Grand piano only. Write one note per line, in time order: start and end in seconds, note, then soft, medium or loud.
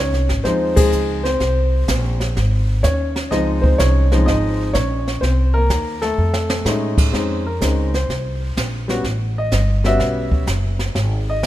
0.00 0.43 C#4 medium
0.00 0.41 C#5 medium
0.44 1.18 F3 medium
0.44 0.79 G#3 medium
0.44 1.19 C4 medium
0.44 1.19 D#4 medium
0.44 0.77 C5 medium
0.76 1.23 G#3 medium
0.76 1.21 G#4 loud
1.24 2.81 C4 medium
1.24 2.79 C5 medium
2.83 3.30 C#4 medium
2.83 3.33 C#5 medium
3.31 4.05 F3 medium
3.31 4.05 G#3 medium
3.31 3.64 C4 medium
3.31 4.06 D#4 medium
3.31 3.61 D#5 medium
3.62 3.79 C4 medium
3.62 3.79 C5 medium
3.78 4.25 C#4 medium
3.78 4.23 C#5 medium
4.12 4.72 F3 medium
4.12 4.72 G#3 medium
4.12 4.72 C4 medium
4.12 4.28 D#4 medium
4.26 4.73 D#4 medium
4.26 4.76 D#5 medium
4.73 5.20 C#4 medium
4.73 5.18 C#5 medium
5.21 5.53 C4 medium
5.21 5.55 C5 medium
5.54 6.00 A#3 medium
5.54 6.03 A#4 loud
6.02 6.64 A3 medium
6.02 6.93 A4 medium
6.65 7.11 G#3 medium
6.65 7.13 A3 medium
6.65 7.12 C#4 medium
6.65 7.12 D#4 medium
7.12 7.42 G#3 medium
7.12 7.42 C4 medium
7.12 7.42 C#4 medium
7.12 7.42 D#4 medium
7.46 7.90 A#4 medium
7.61 7.90 G#3 medium
7.61 7.90 C4 medium
7.61 7.90 C#4 soft
7.61 7.91 D#4 medium
7.94 8.53 C5 medium
8.88 9.02 G3 medium
8.88 9.03 B3 medium
8.88 9.03 C#4 medium
8.88 9.03 F#4 medium
9.38 9.82 D#5 medium
9.84 10.44 G3 medium
9.84 10.45 B3 medium
9.84 10.45 C#4 medium
9.84 10.45 F#4 medium
9.84 10.45 E5 loud
11.30 11.47 D#5 medium